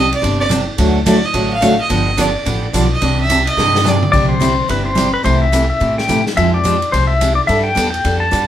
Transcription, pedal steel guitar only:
4.12 D5
4.29 C5
4.71 B4
4.85 C5
5.14 B4
5.25 C5
5.42 E5
5.70 E5
5.98 G5
6.37 E5
6.54 D5
6.92 C5
7.07 E5
7.35 D5
7.47 E5
7.63 G5
7.90 G5
8.20 A5

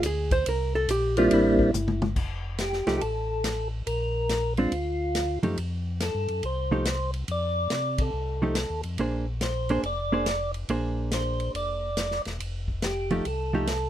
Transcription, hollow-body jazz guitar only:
0.06 G#4
0.32 C5
0.49 A#4
0.75 A4
0.91 G4
1.18 F4
1.33 E4
2.87 F3 A3 D#4 G4
4.58 G#3 C4 D4
5.43 F3 A3 D#4 G4
6.71 F3 A3 D#4 G4
8.42 F3 A3 D#4 G4
8.99 A#3 D4 G#4 C5
9.70 A#3 D4 G#4 C5
10.12 A#3 D4 G#4 C5
10.70 A#3 D4 G#4 C5
13.11 F3 A3 D#4 G4
13.53 F3 A3 D#4 G4

